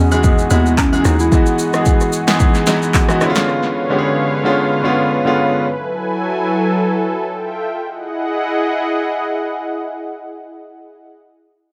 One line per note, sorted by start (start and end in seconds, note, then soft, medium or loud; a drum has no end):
0.00 0.47 E2 medium
0.00 0.11 E3 medium
0.00 0.12 G#3 medium
0.00 0.12 B3 medium
0.00 0.26 C#4 loud
0.00 0.13 D#4 medium
0.00 0.53 F#4 loud
0.00 3.17 F#4 medium
0.00 3.17 G#4 medium
0.00 1.33 D#5 medium
0.00 3.17 D#5 medium
0.00 3.17 F#5 medium
0.11 0.43 E3 medium
0.11 0.44 G#3 medium
0.11 0.44 B3 medium
0.11 0.44 D#4 medium
0.11 0.45 G#4 medium
0.11 high agogo medium
0.11 shaker medium
0.24 0.51 B3 medium
0.24 kick loud
0.24 shaker medium
0.38 shaker medium
0.50 1.01 D#2 medium
0.50 0.84 G#3 medium
0.50 0.80 B3 medium
0.50 0.84 B3 medium
0.50 0.85 D#4 medium
0.50 0.84 E4 medium
0.50 0.85 F#4 medium
0.50 high agogo medium
0.50 shaker loud
0.66 shaker soft
0.78 1.07 C#4 loud
0.78 kick medium
0.78 clap medium
0.78 low woodblock medium
0.78 shaker medium
0.92 1.24 E3 medium
0.92 1.25 G#3 medium
0.92 1.25 B3 medium
0.92 1.25 D#4 medium
0.92 1.26 G#4 medium
0.92 high agogo medium
0.92 shaker medium
1.05 1.30 D#2 medium
1.05 1.22 D#4 loud
1.05 cross-stick medium
1.05 shaker loud
1.19 2.29 E4 loud
1.19 shaker medium
1.31 1.65 E3 medium
1.31 1.65 G#3 medium
1.31 1.65 B3 medium
1.31 1.66 F#4 medium
1.31 1.66 D#5 medium
1.31 kick loud
1.31 shaker medium
1.46 shaker medium
1.59 shaker medium
1.73 2.16 E3 medium
1.73 2.16 G#3 medium
1.73 2.16 B3 medium
1.73 2.17 G#4 medium
1.73 2.17 D#5 medium
1.73 cross-stick medium
1.73 shaker medium
1.86 kick loud
1.86 shaker medium
2.01 shaker medium
2.13 shaker medium
2.27 2.60 E3 medium
2.27 2.60 G#3 medium
2.27 2.60 B3 medium
2.27 2.61 D#4 medium
2.27 2.61 G#4 loud
2.27 snare medium
2.27 shaker medium
2.40 kick loud
2.40 shaker medium
2.54 shaker medium
2.67 3.00 E3 medium
2.67 3.00 G#3 medium
2.67 3.01 B3 medium
2.67 3.01 D#4 medium
2.67 3.01 F#4 loud
2.67 snare medium
2.67 shaker loud
2.82 shaker medium
2.94 kick medium
2.94 clap medium
2.94 shaker medium
3.08 3.21 E3 medium
3.08 3.20 G#3 medium
3.08 3.20 B3 medium
3.08 3.22 D#4 medium
3.08 3.22 F#4 medium
3.08 cross-stick medium
3.08 shaker medium
3.21 3.75 D3 medium
3.21 5.62 D3 medium
3.21 3.75 G#3 medium
3.21 3.76 B3 medium
3.21 3.76 C#4 medium
3.21 3.29 E4 medium
3.21 7.23 B4 medium
3.21 5.62 C#5 medium
3.21 5.62 F5 medium
3.21 cross-stick medium
3.21 shaker loud
3.30 3.80 F4 loud
3.35 snare medium
3.35 shaker medium
3.89 4.32 D3 medium
3.89 4.32 G#3 medium
3.89 4.33 B3 medium
3.89 4.33 C#4 medium
3.89 3.97 G4 medium
3.98 4.37 G#4 loud
4.43 4.76 D3 medium
4.43 4.76 G#3 medium
4.43 4.76 B3 medium
4.43 4.77 C#4 medium
4.43 4.77 F4 loud
4.83 5.16 D3 medium
4.83 5.16 G#3 medium
4.83 5.17 B3 medium
4.83 5.17 C#4 medium
4.83 5.17 F4 loud
5.25 5.57 D3 medium
5.25 5.57 G#3 medium
5.25 5.58 B3 medium
5.25 5.58 C#4 medium
5.25 5.58 F4 loud
5.64 7.25 F#3 medium
5.64 7.25 E4 medium
5.64 7.79 A4 medium
5.64 7.25 G#5 medium
7.27 7.80 F4 medium
7.27 7.80 E5 medium
7.27 7.80 G5 medium
7.81 11.10 E4 medium
7.81 11.10 G#4 medium
7.81 11.10 D#5 medium
7.81 11.10 F#5 medium